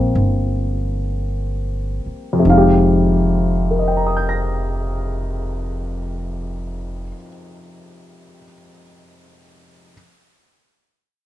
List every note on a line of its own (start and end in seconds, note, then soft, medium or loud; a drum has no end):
0.00 0.12 A#1 medium
0.00 2.42 F3 soft
0.00 2.44 G3 soft
0.00 2.47 A#3 soft
0.00 2.46 C4 medium
0.00 1.22 F5 medium
0.15 2.01 G1 medium
2.06 muted upright bass stroke soft
2.33 7.02 F2 soft
2.39 7.08 C3 soft
2.45 7.10 F1 medium
2.45 7.15 D#3 soft
2.50 7.21 G#3 soft
2.50 7.15 F5 medium
2.57 7.26 G4 medium
3.71 8.36 A#4 soft
3.79 8.44 D#5 soft
3.88 8.53 G5 soft
3.97 8.62 A#5 soft
4.07 8.72 D#6 soft
4.17 8.82 G6 soft
4.29 8.94 A#6 soft